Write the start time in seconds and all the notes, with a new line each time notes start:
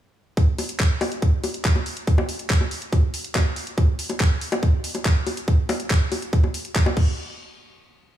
0.37 kick, closed hi-hat
0.58 open hi-hat, high bongo
0.69 closed hi-hat
0.80 kick, clap, closed hi-hat
1.01 open hi-hat, high bongo
1.12 closed hi-hat
1.22 kick, closed hi-hat
1.44 open hi-hat, high bongo
1.54 closed hi-hat
1.65 kick, clap, closed hi-hat
1.75 high bongo
1.86 open hi-hat
1.97 closed hi-hat
2.07 kick, closed hi-hat
2.18 high bongo
2.29 open hi-hat
2.39 closed hi-hat
2.50 kick, clap, closed hi-hat
2.61 high bongo
2.71 open hi-hat
2.82 closed hi-hat
2.93 kick, closed hi-hat, high bongo
3.14 open hi-hat
3.24 closed hi-hat
3.35 kick, clap, closed hi-hat, high bongo
3.56 open hi-hat
3.67 closed hi-hat
3.78 kick, closed hi-hat, high bongo
3.99 open hi-hat
4.10 closed hi-hat, high bongo
4.20 kick, clap, closed hi-hat
4.41 open hi-hat
4.52 closed hi-hat, high bongo
4.63 kick, closed hi-hat
4.84 open hi-hat
4.95 closed hi-hat, high bongo
5.05 kick, clap, closed hi-hat
5.27 open hi-hat, high bongo
5.37 closed hi-hat
5.48 kick, closed hi-hat
5.69 open hi-hat, high bongo
5.80 closed hi-hat
5.90 kick, clap, closed hi-hat
6.12 open hi-hat, high bongo
6.22 closed hi-hat
6.33 kick, closed hi-hat
6.44 high bongo
6.54 open hi-hat
6.65 closed hi-hat
6.75 kick, clap, closed hi-hat
6.86 high bongo
6.97 kick, crash